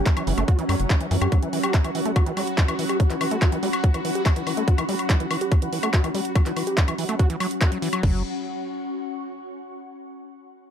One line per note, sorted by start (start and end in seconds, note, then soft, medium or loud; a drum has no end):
0.00 8.08 F#3 medium
0.00 1.34 C#4 medium
0.00 8.02 C#4 medium
0.00 8.03 F#4 medium
0.00 8.03 F#5 medium
0.00 1.19 C#6 loud
0.06 0.10 F#3 medium
0.06 kick loud
0.06 clap loud
0.06 closed hi-hat medium
0.17 0.23 E3 medium
0.17 closed hi-hat medium
0.17 high woodblock medium
0.27 0.33 F#1 loud
0.27 0.33 E3 medium
0.27 open hi-hat loud
0.38 0.44 F#1 medium
0.38 0.44 A3 loud
0.38 closed hi-hat medium
0.38 high woodblock soft
0.48 0.58 F#4 loud
0.48 kick loud
0.48 closed hi-hat medium
0.59 0.65 E3 loud
0.59 closed hi-hat medium
0.69 0.75 F#2 loud
0.69 0.75 G3 loud
0.69 open hi-hat loud
0.69 high woodblock medium
0.80 0.86 F#1 medium
0.80 closed hi-hat medium
0.90 0.96 F#3 medium
0.90 kick loud
0.90 clap loud
0.90 closed hi-hat medium
0.90 high woodblock soft
1.01 1.07 E3 medium
1.01 closed hi-hat medium
1.06 8.03 B5 loud
1.11 1.17 F#2 medium
1.11 1.17 E3 medium
1.11 open hi-hat loud
1.21 1.28 F#2 medium
1.21 1.31 G4 medium
1.21 closed hi-hat medium
1.21 high woodblock medium
1.32 1.38 F#3 medium
1.32 8.05 F#4 medium
1.32 kick loud
1.32 closed hi-hat medium
1.32 high woodblock soft
1.42 1.49 E3 medium
1.42 closed hi-hat medium
1.53 1.59 E3 medium
1.53 open hi-hat loud
1.63 1.73 G4 medium
1.63 closed hi-hat medium
1.63 high woodblock medium
1.74 1.78 F#3 medium
1.74 kick loud
1.74 clap loud
1.74 closed hi-hat medium
1.84 1.91 E3 medium
1.84 closed hi-hat medium
1.84 high woodblock soft
1.95 2.01 E3 medium
1.95 open hi-hat loud
2.05 2.12 A3 loud
2.05 closed hi-hat medium
2.16 2.25 F#4 loud
2.16 kick loud
2.16 closed hi-hat medium
2.16 high woodblock medium
2.26 2.33 E3 loud
2.26 closed hi-hat medium
2.37 2.43 G3 loud
2.37 open hi-hat loud
2.37 high woodblock soft
2.47 closed hi-hat medium
2.58 2.64 F#3 medium
2.58 kick loud
2.58 clap loud
2.58 closed hi-hat medium
2.68 2.75 E3 medium
2.68 closed hi-hat medium
2.68 high woodblock medium
2.79 2.85 E3 medium
2.79 open hi-hat loud
2.89 2.99 G4 medium
2.89 closed hi-hat medium
2.89 high woodblock soft
3.00 3.04 F#3 medium
3.00 kick loud
3.00 closed hi-hat medium
3.10 3.17 E3 medium
3.10 clap soft
3.10 closed hi-hat medium
3.21 3.27 E3 medium
3.21 open hi-hat loud
3.21 high woodblock medium
3.31 3.38 A3 loud
3.31 closed hi-hat medium
3.42 3.51 F#4 loud
3.42 kick loud
3.42 clap loud
3.42 closed hi-hat medium
3.42 high woodblock soft
3.52 3.59 E3 loud
3.52 closed hi-hat medium
3.63 3.69 G3 loud
3.63 open hi-hat loud
3.73 closed hi-hat medium
3.73 high woodblock medium
3.84 3.90 F#3 medium
3.84 kick loud
3.84 closed hi-hat medium
3.94 4.01 E3 medium
3.94 closed hi-hat medium
3.94 high woodblock soft
4.05 4.11 E3 medium
4.05 open hi-hat loud
4.15 4.25 G4 medium
4.15 closed hi-hat medium
4.26 4.29 F#3 medium
4.26 kick loud
4.26 clap loud
4.26 closed hi-hat medium
4.26 high woodblock medium
4.36 4.43 E3 medium
4.36 closed hi-hat medium
4.47 4.53 E3 medium
4.47 open hi-hat loud
4.47 high woodblock soft
4.57 4.64 A3 loud
4.57 closed hi-hat medium
4.68 4.77 F#4 loud
4.68 kick loud
4.68 closed hi-hat medium
4.78 4.84 E3 loud
4.78 closed hi-hat medium
4.78 high woodblock medium
4.89 4.95 G3 loud
4.89 open hi-hat loud
4.99 closed hi-hat medium
4.99 high woodblock soft
5.10 5.16 F#3 medium
5.10 kick loud
5.10 clap loud
5.10 closed hi-hat medium
5.20 5.26 E3 medium
5.20 closed hi-hat medium
5.31 5.37 E3 medium
5.31 open hi-hat loud
5.31 high woodblock medium
5.41 5.51 G4 medium
5.41 closed hi-hat medium
5.52 5.55 F#3 medium
5.52 kick loud
5.52 closed hi-hat medium
5.52 high woodblock soft
5.62 5.68 E3 medium
5.62 closed hi-hat medium
5.73 5.79 E3 medium
5.73 open hi-hat loud
5.83 5.89 A3 loud
5.83 closed hi-hat medium
5.83 high woodblock medium
5.94 6.03 F#4 loud
5.94 kick loud
5.94 clap loud
5.94 closed hi-hat medium
6.04 6.10 E3 loud
6.04 closed hi-hat medium
6.04 high woodblock soft
6.14 6.21 G3 loud
6.14 open hi-hat loud
6.25 closed hi-hat medium
6.35 6.42 F#3 medium
6.35 kick loud
6.35 closed hi-hat medium
6.35 high woodblock medium
6.46 6.52 E3 medium
6.46 clap soft
6.46 closed hi-hat medium
6.56 6.63 E3 medium
6.56 open hi-hat loud
6.56 high woodblock soft
6.67 6.76 G4 medium
6.67 closed hi-hat medium
6.77 6.81 F#3 medium
6.77 kick loud
6.77 clap loud
6.77 closed hi-hat medium
6.88 6.94 E3 medium
6.88 closed hi-hat medium
6.88 high woodblock medium
6.98 7.05 E3 medium
6.98 open hi-hat loud
7.09 7.15 A3 loud
7.09 closed hi-hat medium
7.09 high woodblock soft
7.19 7.29 F#4 loud
7.19 kick loud
7.19 closed hi-hat medium
7.30 7.36 E3 loud
7.30 closed hi-hat medium
7.40 7.47 F#3 loud
7.40 open hi-hat loud
7.40 high woodblock medium
7.51 closed hi-hat medium
7.61 7.71 F#4 medium
7.61 kick loud
7.61 clap loud
7.61 closed hi-hat medium
7.61 high woodblock soft
7.72 7.78 F#3 medium
7.72 closed hi-hat medium
7.82 7.89 E3 loud
7.82 open hi-hat loud
7.93 8.02 F#3 medium
7.93 closed hi-hat medium
7.93 high woodblock medium
8.03 8.23 F#1 loud
8.03 8.23 F#3 medium
8.03 9.67 C#4 medium
8.03 kick loud
8.03 crash medium
8.10 9.67 F#4 medium
8.16 9.67 F#5 medium
8.22 9.67 C#6 medium